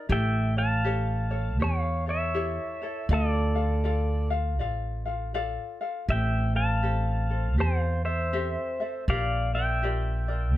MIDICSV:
0, 0, Header, 1, 4, 480
1, 0, Start_track
1, 0, Tempo, 748130
1, 61, Time_signature, 4, 2, 24, 8
1, 6784, End_track
2, 0, Start_track
2, 0, Title_t, "Pedal steel guitar"
2, 0, Program_c, 0, 26
2, 79, Note_on_c, 0, 79, 99
2, 80, Note_on_c, 0, 76, 78
2, 348, Note_off_c, 0, 76, 0
2, 373, Note_off_c, 0, 79, 0
2, 373, Note_on_c, 0, 77, 79
2, 376, Note_on_c, 0, 81, 94
2, 1004, Note_off_c, 0, 77, 0
2, 1041, Note_on_c, 0, 73, 69
2, 1050, Note_off_c, 0, 81, 0
2, 1052, Note_on_c, 0, 77, 86
2, 1309, Note_off_c, 0, 73, 0
2, 1315, Note_off_c, 0, 77, 0
2, 1342, Note_on_c, 0, 73, 66
2, 1350, Note_on_c, 0, 76, 88
2, 1968, Note_off_c, 0, 73, 0
2, 1973, Note_off_c, 0, 76, 0
2, 2007, Note_on_c, 0, 69, 58
2, 2015, Note_on_c, 0, 74, 77
2, 2747, Note_off_c, 0, 69, 0
2, 2751, Note_off_c, 0, 74, 0
2, 3916, Note_on_c, 0, 76, 75
2, 3925, Note_on_c, 0, 79, 97
2, 4187, Note_off_c, 0, 76, 0
2, 4192, Note_off_c, 0, 79, 0
2, 4210, Note_on_c, 0, 77, 74
2, 4212, Note_on_c, 0, 81, 90
2, 4843, Note_off_c, 0, 77, 0
2, 4878, Note_on_c, 0, 72, 70
2, 4883, Note_on_c, 0, 77, 83
2, 4889, Note_off_c, 0, 81, 0
2, 5148, Note_off_c, 0, 72, 0
2, 5165, Note_off_c, 0, 77, 0
2, 5165, Note_on_c, 0, 72, 75
2, 5168, Note_on_c, 0, 76, 93
2, 5800, Note_off_c, 0, 76, 0
2, 5801, Note_off_c, 0, 72, 0
2, 5837, Note_on_c, 0, 74, 69
2, 5838, Note_on_c, 0, 77, 92
2, 6107, Note_off_c, 0, 74, 0
2, 6123, Note_off_c, 0, 77, 0
2, 6126, Note_on_c, 0, 76, 71
2, 6126, Note_on_c, 0, 79, 87
2, 6761, Note_off_c, 0, 76, 0
2, 6784, Note_off_c, 0, 79, 0
2, 6784, End_track
3, 0, Start_track
3, 0, Title_t, "Ukulele"
3, 0, Program_c, 1, 24
3, 56, Note_on_c, 1, 67, 69
3, 64, Note_on_c, 1, 64, 78
3, 65, Note_on_c, 1, 73, 73
3, 67, Note_on_c, 1, 69, 80
3, 356, Note_off_c, 1, 67, 0
3, 356, Note_off_c, 1, 73, 0
3, 360, Note_off_c, 1, 64, 0
3, 361, Note_off_c, 1, 69, 0
3, 364, Note_on_c, 1, 73, 49
3, 370, Note_on_c, 1, 69, 44
3, 539, Note_off_c, 1, 69, 0
3, 541, Note_on_c, 1, 67, 72
3, 543, Note_off_c, 1, 73, 0
3, 547, Note_on_c, 1, 69, 71
3, 550, Note_on_c, 1, 73, 75
3, 830, Note_off_c, 1, 73, 0
3, 836, Note_off_c, 1, 69, 0
3, 838, Note_on_c, 1, 73, 54
3, 839, Note_off_c, 1, 67, 0
3, 843, Note_on_c, 1, 69, 52
3, 1021, Note_off_c, 1, 69, 0
3, 1022, Note_off_c, 1, 73, 0
3, 1023, Note_on_c, 1, 67, 55
3, 1028, Note_on_c, 1, 69, 55
3, 1035, Note_on_c, 1, 73, 69
3, 1314, Note_off_c, 1, 73, 0
3, 1319, Note_off_c, 1, 67, 0
3, 1321, Note_off_c, 1, 69, 0
3, 1322, Note_on_c, 1, 73, 45
3, 1329, Note_on_c, 1, 69, 42
3, 1334, Note_on_c, 1, 64, 39
3, 1497, Note_off_c, 1, 64, 0
3, 1503, Note_off_c, 1, 69, 0
3, 1503, Note_on_c, 1, 67, 76
3, 1504, Note_off_c, 1, 73, 0
3, 1504, Note_on_c, 1, 64, 83
3, 1510, Note_on_c, 1, 73, 90
3, 1511, Note_on_c, 1, 69, 76
3, 1799, Note_off_c, 1, 73, 0
3, 1801, Note_off_c, 1, 64, 0
3, 1801, Note_off_c, 1, 67, 0
3, 1805, Note_off_c, 1, 69, 0
3, 1807, Note_on_c, 1, 73, 52
3, 1814, Note_on_c, 1, 69, 52
3, 1821, Note_on_c, 1, 64, 44
3, 1986, Note_off_c, 1, 73, 0
3, 1990, Note_off_c, 1, 69, 0
3, 1991, Note_on_c, 1, 74, 69
3, 1993, Note_off_c, 1, 64, 0
3, 1994, Note_on_c, 1, 65, 79
3, 1996, Note_on_c, 1, 77, 86
3, 1997, Note_on_c, 1, 69, 84
3, 2272, Note_off_c, 1, 77, 0
3, 2279, Note_on_c, 1, 77, 52
3, 2280, Note_off_c, 1, 69, 0
3, 2284, Note_off_c, 1, 65, 0
3, 2285, Note_off_c, 1, 74, 0
3, 2287, Note_on_c, 1, 69, 52
3, 2291, Note_on_c, 1, 65, 46
3, 2461, Note_off_c, 1, 69, 0
3, 2462, Note_off_c, 1, 65, 0
3, 2462, Note_on_c, 1, 74, 66
3, 2463, Note_off_c, 1, 77, 0
3, 2469, Note_on_c, 1, 65, 70
3, 2469, Note_on_c, 1, 69, 80
3, 2471, Note_on_c, 1, 77, 81
3, 2753, Note_off_c, 1, 77, 0
3, 2759, Note_off_c, 1, 69, 0
3, 2760, Note_off_c, 1, 74, 0
3, 2761, Note_on_c, 1, 77, 65
3, 2764, Note_off_c, 1, 65, 0
3, 2767, Note_on_c, 1, 69, 52
3, 2772, Note_on_c, 1, 65, 48
3, 2944, Note_off_c, 1, 77, 0
3, 2945, Note_off_c, 1, 65, 0
3, 2946, Note_on_c, 1, 74, 63
3, 2947, Note_off_c, 1, 69, 0
3, 2953, Note_on_c, 1, 65, 65
3, 2955, Note_on_c, 1, 69, 64
3, 2957, Note_on_c, 1, 77, 75
3, 3235, Note_off_c, 1, 77, 0
3, 3242, Note_off_c, 1, 69, 0
3, 3242, Note_off_c, 1, 74, 0
3, 3243, Note_on_c, 1, 77, 47
3, 3246, Note_off_c, 1, 65, 0
3, 3250, Note_on_c, 1, 69, 48
3, 3254, Note_on_c, 1, 65, 47
3, 3422, Note_off_c, 1, 65, 0
3, 3423, Note_off_c, 1, 77, 0
3, 3426, Note_off_c, 1, 69, 0
3, 3428, Note_on_c, 1, 74, 84
3, 3429, Note_on_c, 1, 65, 80
3, 3431, Note_on_c, 1, 77, 88
3, 3434, Note_on_c, 1, 69, 88
3, 3719, Note_off_c, 1, 77, 0
3, 3723, Note_off_c, 1, 74, 0
3, 3724, Note_off_c, 1, 65, 0
3, 3725, Note_off_c, 1, 69, 0
3, 3726, Note_on_c, 1, 77, 59
3, 3733, Note_on_c, 1, 69, 48
3, 3739, Note_on_c, 1, 65, 44
3, 3900, Note_off_c, 1, 69, 0
3, 3903, Note_on_c, 1, 67, 71
3, 3904, Note_off_c, 1, 65, 0
3, 3906, Note_on_c, 1, 60, 76
3, 3907, Note_off_c, 1, 77, 0
3, 3908, Note_on_c, 1, 69, 68
3, 3912, Note_on_c, 1, 76, 73
3, 4194, Note_off_c, 1, 69, 0
3, 4200, Note_off_c, 1, 76, 0
3, 4201, Note_off_c, 1, 67, 0
3, 4202, Note_on_c, 1, 69, 47
3, 4203, Note_off_c, 1, 60, 0
3, 4209, Note_on_c, 1, 60, 45
3, 4376, Note_off_c, 1, 60, 0
3, 4379, Note_on_c, 1, 67, 65
3, 4381, Note_off_c, 1, 69, 0
3, 4383, Note_on_c, 1, 60, 72
3, 4389, Note_on_c, 1, 69, 78
3, 4677, Note_off_c, 1, 69, 0
3, 4679, Note_off_c, 1, 67, 0
3, 4681, Note_off_c, 1, 60, 0
3, 4685, Note_on_c, 1, 69, 51
3, 4692, Note_on_c, 1, 60, 48
3, 4858, Note_off_c, 1, 60, 0
3, 4862, Note_on_c, 1, 67, 60
3, 4865, Note_off_c, 1, 69, 0
3, 4866, Note_on_c, 1, 60, 61
3, 4872, Note_on_c, 1, 69, 62
3, 5160, Note_off_c, 1, 67, 0
3, 5162, Note_off_c, 1, 60, 0
3, 5165, Note_off_c, 1, 69, 0
3, 5168, Note_on_c, 1, 76, 45
3, 5175, Note_on_c, 1, 69, 44
3, 5179, Note_on_c, 1, 60, 41
3, 5337, Note_off_c, 1, 60, 0
3, 5340, Note_off_c, 1, 69, 0
3, 5341, Note_off_c, 1, 76, 0
3, 5344, Note_on_c, 1, 67, 80
3, 5345, Note_on_c, 1, 60, 87
3, 5348, Note_on_c, 1, 69, 77
3, 5348, Note_on_c, 1, 76, 86
3, 5638, Note_off_c, 1, 76, 0
3, 5641, Note_off_c, 1, 67, 0
3, 5642, Note_off_c, 1, 60, 0
3, 5643, Note_off_c, 1, 69, 0
3, 5646, Note_on_c, 1, 76, 53
3, 5652, Note_on_c, 1, 69, 48
3, 5658, Note_on_c, 1, 60, 47
3, 5826, Note_off_c, 1, 76, 0
3, 5829, Note_off_c, 1, 60, 0
3, 5829, Note_off_c, 1, 69, 0
3, 5831, Note_on_c, 1, 65, 72
3, 5831, Note_on_c, 1, 67, 71
3, 5837, Note_on_c, 1, 70, 83
3, 5838, Note_on_c, 1, 74, 78
3, 6117, Note_off_c, 1, 74, 0
3, 6124, Note_off_c, 1, 70, 0
3, 6124, Note_on_c, 1, 74, 57
3, 6125, Note_off_c, 1, 65, 0
3, 6125, Note_off_c, 1, 67, 0
3, 6131, Note_on_c, 1, 70, 46
3, 6136, Note_on_c, 1, 65, 41
3, 6303, Note_off_c, 1, 70, 0
3, 6304, Note_off_c, 1, 65, 0
3, 6305, Note_on_c, 1, 67, 73
3, 6306, Note_off_c, 1, 74, 0
3, 6311, Note_on_c, 1, 70, 76
3, 6312, Note_on_c, 1, 65, 77
3, 6315, Note_on_c, 1, 74, 77
3, 6588, Note_off_c, 1, 74, 0
3, 6595, Note_off_c, 1, 70, 0
3, 6596, Note_on_c, 1, 74, 51
3, 6602, Note_off_c, 1, 67, 0
3, 6603, Note_off_c, 1, 65, 0
3, 6603, Note_on_c, 1, 70, 51
3, 6611, Note_on_c, 1, 65, 48
3, 6771, Note_off_c, 1, 65, 0
3, 6776, Note_off_c, 1, 70, 0
3, 6778, Note_off_c, 1, 74, 0
3, 6784, End_track
4, 0, Start_track
4, 0, Title_t, "Upright bass"
4, 0, Program_c, 2, 32
4, 60, Note_on_c, 2, 33, 94
4, 1027, Note_off_c, 2, 33, 0
4, 1027, Note_on_c, 2, 40, 92
4, 1650, Note_off_c, 2, 40, 0
4, 1982, Note_on_c, 2, 38, 87
4, 2947, Note_off_c, 2, 38, 0
4, 2947, Note_on_c, 2, 33, 88
4, 3570, Note_off_c, 2, 33, 0
4, 3904, Note_on_c, 2, 33, 92
4, 4864, Note_off_c, 2, 33, 0
4, 4864, Note_on_c, 2, 40, 84
4, 5488, Note_off_c, 2, 40, 0
4, 5825, Note_on_c, 2, 34, 91
4, 6783, Note_off_c, 2, 34, 0
4, 6784, End_track
0, 0, End_of_file